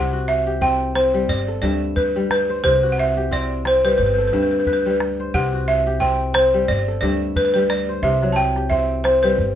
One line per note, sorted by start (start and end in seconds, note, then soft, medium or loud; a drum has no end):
0.00 1.25 C2 medium
0.00 1.34 C3 medium
0.00 0.19 G4 medium
0.00 0.26 F#5 medium
0.13 1.20 F#4 medium
0.28 0.63 E5 medium
0.28 calabash click soft
0.47 1.88 G4 medium
0.61 0.95 C4 medium
0.61 0.93 G5 medium
0.61 calabash thump medium
0.95 2.03 C4 medium
0.95 1.30 C5 medium
0.95 calabash click medium
1.14 1.34 G3 medium
1.28 1.60 G1 medium
1.28 1.61 D5 medium
1.28 calabash thump medium
1.48 2.80 A4 medium
1.62 2.60 D2 medium
1.62 2.69 G2 medium
1.62 1.97 D5 medium
1.62 2.66 E5 medium
1.96 2.30 B4 medium
1.96 2.56 B4 medium
1.96 calabash thump medium
2.16 2.69 G3 medium
2.31 2.65 B4 medium
2.31 calabash click medium
2.50 3.68 C5 medium
2.64 3.95 C2 loud
2.64 4.04 C3 medium
2.64 2.89 C5 medium
2.64 calabash thump medium
2.83 3.90 F#4 medium
2.92 2.98 F#5 medium
2.98 3.33 E5 medium
2.98 calabash click soft
3.17 4.58 G4 medium
3.31 3.65 C4 medium
3.31 3.67 D5 medium
3.31 calabash thump medium
3.65 4.73 C4 medium
3.65 3.84 C5 medium
3.65 calabash click medium
3.85 4.04 G3 medium
3.85 3.90 B4 medium
3.92 3.97 B4 medium
3.98 4.30 G1 medium
3.98 4.05 B4 medium
3.98 calabash thump medium
4.06 4.13 B4 soft
4.14 4.20 B4 medium
4.18 5.50 A4 medium
4.18 4.26 B4 soft
4.27 4.34 B4 soft
4.32 5.29 D2 medium
4.32 5.38 G2 medium
4.32 5.36 E5 medium
4.36 4.41 B4 soft
4.43 4.50 B4 soft
4.51 4.57 B4 soft
4.59 4.64 B4 soft
4.67 4.72 B4 soft
4.67 5.26 B4 medium
4.67 calabash thump medium
4.73 4.80 B4 soft
4.83 5.38 G3 medium
4.83 4.88 B4 soft
4.90 4.95 B4 medium
5.00 calabash click medium
5.20 6.38 C5 medium
5.34 6.64 C2 medium
5.34 6.73 C3 medium
5.34 5.68 F#5 loud
5.34 calabash thump medium
5.53 6.60 F#4 medium
5.68 6.02 E5 medium
5.68 calabash click soft
5.87 7.28 G4 medium
6.00 6.34 C4 medium
6.00 6.15 G5 medium
6.00 calabash thump medium
6.34 7.42 C4 medium
6.34 6.69 C5 medium
6.34 calabash click medium
6.54 6.73 G3 medium
6.68 6.99 G1 medium
6.68 7.00 D5 medium
6.68 calabash thump medium
6.88 8.20 A4 medium
7.01 7.99 D2 medium
7.01 8.08 G2 medium
7.01 7.33 D5 medium
7.01 8.06 E5 medium
7.36 7.95 B4 medium
7.36 7.44 B4 medium
7.36 calabash thump medium
7.45 7.52 B4 medium
7.54 8.08 G3 medium
7.54 7.69 B4 medium
7.70 8.01 D5 medium
7.70 calabash click medium
7.89 9.08 C5 medium
8.02 9.33 C2 loud
8.02 9.42 C3 medium
8.02 8.31 E5 medium
8.02 calabash thump medium
8.02 calabash click soft
8.22 9.42 F#3 medium
8.22 calabash click soft
8.32 8.68 G5 medium
8.32 8.38 A5 medium
8.37 calabash click soft
8.56 9.55 G4 medium
8.56 calabash click soft
8.70 9.05 C4 medium
8.70 9.05 E5 medium
8.70 calabash thump medium
8.70 calabash click soft
9.04 9.55 C4 medium
9.04 9.21 C5 medium
9.04 calabash click medium
9.23 9.43 G3 medium
9.23 9.55 B4 medium
9.38 9.55 G1 medium
9.38 calabash thump medium